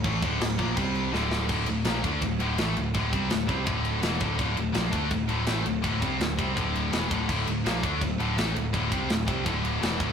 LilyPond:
<<
  \new Staff \with { instrumentName = "Distorted electric guitar" } { \clef bass \time 4/4 \key d \minor \tempo 4 = 166 <a, e a>8 <d, a, d>8 <d, a,>8 <bes, f bes>8 <c g c'>4 <d, a, d>4 | <d, a, d>8 <d, a,>8 <bes, f bes>8 <d a d'>8 <d, a,>8 <d, a, d>8 <a, e a>8 <d, a,>8 | <d, a, d>8 <c g c'>8 <d, a,>8 <c g c'>8 <d, a, d>4 <e, b, e>8 <d, a, d>8 | <d, a, d>8 <d, a,>8 <bes, f bes>8 <d a d'>8 <d, a,>8 <d, a, d>8 <a, e a>8 <d, a,>8 |
<d, a, d>8 <c g c'>8 <d, a,>8 <c g c'>8 <d, a, d>4 <e, b, e>8 <d, a, d>8 | <d, a, d>8 <d, a,>8 <bes, f bes>8 <d a d'>8 <d, a,>8 <d, a, d>8 <a, e a>8 <d, a,>8 | <d, a, d>8 <c g c'>8 <d, a,>8 <c g c'>8 <d, a, d>4 <e, b, e>8 <d, a, d>8 | }
  \new Staff \with { instrumentName = "Distorted electric guitar" } { \clef bass \time 4/4 \key d \minor <a, e a>8 <d, a, d>8 <d, a,>8 <bes, f bes>8 <c g c'>4 <d, a, d>4 | <d, a, d>8 <d, a,>8 <bes, f bes>8 <d a d'>8 <d, a,>8 <d, a, d>8 <a, e a>8 <d, a,>8 | <d, a, d>8 <c g c'>8 <d, a,>8 <c g c'>8 <d, a, d>4 <e, b, e>8 <d, a, d>8 | <d, a, d>8 <d, a,>8 <bes, f bes>8 <d a d'>8 <d, a,>8 <d, a, d>8 <a, e a>8 <d, a,>8 |
<d, a, d>8 <c g c'>8 <d, a,>8 <c g c'>8 <d, a, d>4 <e, b, e>8 <d, a, d>8 | <d, a, d>8 <d, a,>8 <bes, f bes>8 <d a d'>8 <d, a,>8 <d, a, d>8 <a, e a>8 <d, a,>8 | <d, a, d>8 <c g c'>8 <d, a,>8 <c g c'>8 <d, a, d>4 <e, b, e>8 <d, a, d>8 | }
  \new Staff \with { instrumentName = "Picked electric bass" } { \clef bass \time 4/4 \key d \minor a,,8 d,,8 d,,8 bes,,8 c,4 d,,4 | d,,8 d,,8 bes,,8 d,8 d,,8 d,,8 a,,8 d,,8 | d,,8 c,8 d,,8 c,8 d,,4 e,,8 d,,8 | d,,8 d,,8 bes,,8 d,8 d,,8 d,,8 a,,8 d,,8 |
d,,8 c,8 d,,8 c,8 d,,4 e,,8 d,,8 | d,,8 d,,8 bes,,8 d,8 d,,8 d,,8 a,,8 d,,8 | d,,8 c,8 d,,8 c,8 d,,4 e,,8 d,,8 | }
  \new DrumStaff \with { instrumentName = "Drums" } \drummode { \time 4/4 <cymc bd>8 <cymc bd>8 <cymc sn>8 <cymc bd>8 <cymc bd>8 cymc8 sn8 sn8 | <cymc bd>8 cymr8 <cymr sn>8 <bd cymr>8 <bd cymr>8 cymr8 <cymr sn>8 cymr8 | <bd cymr>8 <bd cymr>8 <cymr sn>8 <bd cymr>8 <bd cymr>8 cymr8 <cymr sn>8 <bd cymr>8 | <bd cymr>8 cymr8 <cymr sn>8 <bd cymr>8 <bd cymr>8 cymr8 <cymr sn>8 cymr8 |
<bd cymr>8 <bd cymr>8 <cymr sn>8 <bd cymr>8 <bd cymr>8 cymr8 <cymr sn>8 <bd cymr>8 | <cymc bd>8 cymr8 <cymr sn>8 <bd cymr>8 <bd cymr>8 cymr8 <cymr sn>8 cymr8 | <bd cymr>8 <bd cymr>8 <cymr sn>8 <bd cymr>8 <bd cymr>8 cymr8 <cymr sn>8 <bd cymr>8 | }
>>